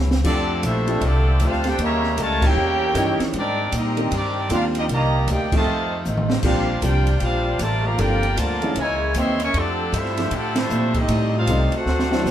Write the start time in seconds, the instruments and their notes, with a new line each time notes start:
Already playing: upright bass C#2, steel-string acoustic guitar C3 A#3 C#4 E4
0.11 snare
0.23 upright bass F2, saxophone section D3 F3 G3 A3, trombone section D3 A3 D4, steel-string acoustic guitar F3 A3 D4 G4, grand piano A3 C4 D4 F4 G4, trumpet section C4 G4 A4 D5, kick, crash
0.62 upright bass A#1, steel-string acoustic guitar F3 A3 D4 G4, trombone section A3 C4 E4, trumpet section D4 A4 C5 E5, kick, hi-hat pedal, ride
0.87 grand piano A3 C4 D4 F4 G4, ride
1.01 upright bass C2, trombone section D3 A3 D4, steel-string acoustic guitar F3 A3, kick, ride
1.06 trumpet section C4 G4 A4 D5, steel-string acoustic guitar D4 G4
1.40 upright bass D2, steel-string acoustic guitar F3 A3 D4, trombone section F4, kick, hi-hat pedal, ride
1.44 trombone section C4 D4, trumpet section D4 A4 C5 F5, steel-string acoustic guitar G4
1.52 snare
1.64 trombone section C4 D4 G4, snare, ride
1.69 trumpet section D4 A4 C5 G5
1.78 upright bass D#2, saxophone section C#3 E3 C#4, trombone section C#3 G3 A#3, steel-string acoustic guitar D#3 G3 C#4, kick, ride
1.83 steel-string acoustic guitar E4, trumpet section G4 C#5 E5 A#5
2.03 snare
2.17 upright bass C#2, steel-string acoustic guitar D#3 G3 C#4 E4, trombone section A3, kick, hi-hat pedal, ride
2.21 trumpet section F4 A#4 C#5 A5
2.42 grand piano E3 A#3 C#4 D#4 G4, trombone section A#3 C#4 G4, kick, crash
2.46 trumpet section E4 A#4 C#5 G5
2.55 upright bass E2, steel-string acoustic guitar D#3 G3 C#4
2.60 steel-string acoustic guitar E4
2.94 upright bass G2, steel-string acoustic guitar D#3 G3 C#4 E4, grand piano E3 A#3 C#4 D#4 G4, kick, hi-hat pedal, ride
3.19 muted upright bass stroke, snare, ride
3.33 upright bass G#2, steel-string acoustic guitar G#2 G3 C4 D4, saxophone section C3 A#3 C4, kick, ride
3.37 trombone section D#3 G3 D4, trumpet section C4 G4 A#4 D5
3.72 steel-string acoustic guitar G#2 G3 C4 D4, upright bass A#2, trombone section G3 C4 D#4, kick, hi-hat pedal, ride
3.76 trumpet section C4 G4 A#4 D#5
3.97 grand piano D#3 A#3 C4 D4 G4, ride
4.11 upright bass G2, steel-string acoustic guitar G#2 G3 C4 D4, trombone section D#3 G3 D4, kick, ride
4.16 trumpet section C4 G4 A#4 D5
4.50 upright bass D#2, steel-string acoustic guitar G#2 G3 C4 D4, grand piano D#3 A#3 C4 D4 F4, trombone section F4, kick, hi-hat pedal, ride
4.54 trumpet section D4 G4 A#4 F5
4.75 trombone section G3 C4 D#4, trumpet section G4 D#5, ride
4.79 trumpet section C4 A#4
4.89 upright bass C2, saxophone section C3 D#4, steel-string acoustic guitar C3 D#3 A#3 D4, trombone section D#3 G3, kick, ride
4.93 trombone section A#3, trumpet section G4 D5 D#5 A#5
5.27 upright bass D2, steel-string acoustic guitar C3 D#3 A#3 D4, trombone section A#3 D#4 G4, kick, hi-hat pedal, ride
5.32 trumpet section D#4 A#4 D5 G5
5.52 trombone section D#3 A3, grand piano F3 A3 C4 D#4 G4, kick, crash
5.56 trombone section C3, trumpet section F4 C5 D#5 A5
5.66 upright bass F2, steel-string acoustic guitar F2 D#3 A3, saxophone section F3 A3 D#4
5.70 steel-string acoustic guitar C4
6.05 upright bass A1, steel-string acoustic guitar F2 D#3 A3 C4, hi-hat pedal
6.17 mid tom
6.30 snare
6.42 upright bass A#1, steel-string acoustic guitar A#2 G3 C4, grand piano F3 A#3 C4 D4 G4, saxophone section G3 A#3 D4, trombone section G3 D4 F4, trumpet section D4 G4 C5, kick, crash
6.46 steel-string acoustic guitar D4, trumpet section F5
6.81 upright bass C2, steel-string acoustic guitar A#2 G3 C4 D4, grand piano F3 A#3 C4 D4 A#4, trombone section G3 D4 G4, trumpet section F4 D5, kick, hi-hat pedal, ride
6.85 trumpet section C5 G5
7.07 ride
7.20 upright bass A#1, steel-string acoustic guitar A#2 G3 C4, trombone section G3 D4 F4, trumpet section D4, kick, ride
7.24 steel-string acoustic guitar D4, trumpet section G4 C5 F5
7.59 upright bass A1, steel-string acoustic guitar A#2 G3 C4, trombone section A3, trumpet section F4 A#4 D5 A5, kick, hi-hat pedal, ride
7.63 steel-string acoustic guitar D4
7.85 trombone section F3 G3 A#3, trumpet section G4 D5 F5 A#5
7.97 upright bass G1, steel-string acoustic guitar G2 F3 A#3, grand piano F3 A#3 C4 D4 A4, saxophone section G3 F4, trombone section A#3 D4 G4, trumpet section F4 A#4 D5 G5, kick, ride
8.02 steel-string acoustic guitar C4
8.23 ride
8.37 upright bass D2, steel-string acoustic guitar G2 F3 A#3 C4, trombone section D3 F3 A#3, trumpet section F4 A#4 D5 A5, kick, hi-hat pedal, ride
8.62 grand piano E3 A#3 C#4 D#4 G#4, ride
8.76 upright bass C#2, steel-string acoustic guitar F#2 E3 A#3 D#4, saxophone section C#3 G#3 E4, trombone section C#3 E3 G#3, trumpet section A#4 C#5 G#5, kick, ride
8.80 trumpet section E4
9.14 upright bass D#2, steel-string acoustic guitar F#2 E3 A#3 D#4, trombone section C4, trumpet section G#4 C#5 E5, kick, hi-hat pedal, ride
9.19 trumpet section C6
9.40 trombone section E3 A#3 C#4, trumpet section A#4 E5 G#5 C#6, ride
9.53 upright bass F2, saxophone section D3 F3 G3 A3, trombone section D3 A3 D4, steel-string acoustic guitar F3 A3 D4 G4, kick, ride
9.58 trumpet section C4 G4 A4 D5
9.92 upright bass G2, steel-string acoustic guitar F3 A3 D4 G4, trombone section A3 C4 E4, kick, hi-hat pedal, ride
9.97 trumpet section D4 A4 C5 E5
10.06 snare
10.18 grand piano F3 A3 C4 D4 G4, snare, ride
10.30 upright bass A2, trombone section D3 A3 D4, steel-string acoustic guitar F3 A3 D4 G4, kick, ride
10.36 trumpet section C4 G4 A4 D5
10.55 trombone section A3 C4 E4, trumpet section A4, snare, ride
10.60 trumpet section D4 C5 E5
10.69 upright bass A#2, steel-string acoustic guitar F3 A3 D4 G4, hi-hat pedal
10.94 trombone section G3 C4 D#4, kick, ride
10.98 trumpet section C4 G4 A4 D#5
11.08 upright bass A2, steel-string acoustic guitar A2 G3 C4 D#4, saxophone section C3 G3 D#4, kick, ride
11.37 trombone section G3 C4 F4, trumpet section D#4 A4 C5 F5
11.46 upright bass C2, steel-string acoustic guitar A2 G3 C4 D#4, grand piano G3 A3 C4 D#4 G4, kick, hi-hat pedal, ride
11.72 trombone section A3, ride
11.76 trombone section C4 F#4, trumpet section D4 A4 C5 F#5
11.85 upright bass D2, steel-string acoustic guitar D3 A3 C4 F#4, saxophone section F#3 D4, snare
11.99 snare
12.11 grand piano F#3 C4 D4 E4 F#4, snare
12.24 upright bass A1, steel-string acoustic guitar D3 A3 C4 F#4, snare, hi-hat pedal